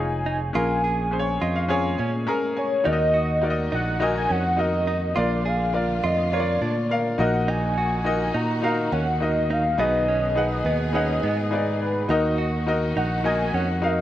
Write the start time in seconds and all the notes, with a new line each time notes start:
Already playing: F1 D#4 F4 G#4 C#5
0.00 G#5
0.26 D#4
0.53 A#1 A#2 C#4 F4 G#4 A#4 G#5
0.84 G#4
1.11 C#4 G#4 C5
1.19 C#5
1.41 F2 F4 D#5
1.56 F5
1.68 C#4 F4 G#4 C#5 G#5
1.98 A#2 C#4 G#5
2.27 C#4 G#4 A#4 A#5
2.57 C#5 G#5
2.84 D#2 D#3 A#3 D#4 F#4 A#4 D5 D#5
2.93 D#5
3.14 F#4
3.42 D#4 F#4 A#4 D5
3.50 D#5
3.72 A#1 D#4 F#5
4.00 D#4 F#4 A#4 D#5 G#5
4.17 G#5
4.29 F2 C#4 F#5
4.57 D#4 F#4 A#4 D#5
4.87 D#4
5.15 A#1 A#2 D3 D4 F4 A#4 D5
5.46 G#4 F5
5.73 D4 F4 A#4 D5
6.03 F2 F4 D#5
6.31 D4 F4 A#4 C#5 D5
6.40 D5
6.61 A#2 D4
6.89 D4 F4 A#4 F5
7.18 A#1 A#2 D#3 A#3 D#4 F#4 A#4 D#5 F#5
7.48 D#4 G#5
7.78 F#4
8.05 D#4 F#4 A#4 D#5
8.34 A#2 D#4 A#5
8.62 D#4 F#4 A#4 F5
8.92 D#2 C#4 F#5
9.20 D#4 F#4 A#4 D#5
9.50 D#4 F5
9.78 B1 B2 B3 D#4 G#4 B4 D#5
10.08 C#4
10.36 D#4 G#4 B4 F#5
10.65 D#2 B3
10.93 C#4 D#4 G#4 B4 D#5 F#5
11.23 G#2 B3
11.51 D#4 G#4 B4 D5
11.82 B4
12.08 D#2 D#3 A#3 D#4 F#4 A#4 D#5
12.38 F#4
12.67 D#4 F#4 A#4 D#5
12.96 A#1 D#4 F#5
13.24 D#4 F#4 A#4 D#5 G#5
13.41 G#5
13.53 F2 C#4 F#5
13.82 D#4 F#4 A#4 D#5 F5